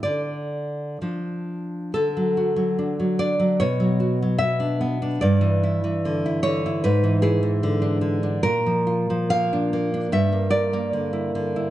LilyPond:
\new Staff \with { instrumentName = "Nylon-string guitar" } { \time 2/4 \key d \minor \tempo 4 = 73 << { d''4 r4 | \key e \dorian a'4. d''8 | cis''4 e''4 | d''4. cis''8 |
b'8 gis'8 r4 | \key bes \lydian bes'4 f''4 | e''8 d''4. | } \\ { d4 <f d'>4 | d16 fis16 fis'16 fis16 d'16 fis16 d'16 fis16 | b,16 fis16 fis'16 fis16 b16 d'16 b16 d'16 | g,16 e16 e'16 e16 d16 e'16 d16 e'16 |
gis,16 e16 e'16 e16 d16 d'16 d16 d'16 | bes,16 f16 f'16 f16 bes16 d'16 bes16 d'16 | g,16 bes16 bes'16 bes16 d16 e'16 d16 e'16 | } >> }